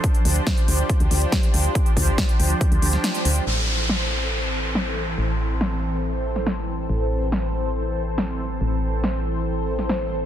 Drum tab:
CC |----------------|----------------|x---------------|----------------|
HH |xxoxxxoxxxoxxxox|xxoxxxoxxxoxxxox|----------------|----------------|
SD |----o-------o---|----o------oo---|----o-------o---|----o------oo---|
BD |o---o---o---o---|o-o-o---o-------|----------------|----------------|

CC |----------------|----------------|
HH |----------------|----------------|
SD |----o-------o---|----o------oo---|
BD |----------------|----------------|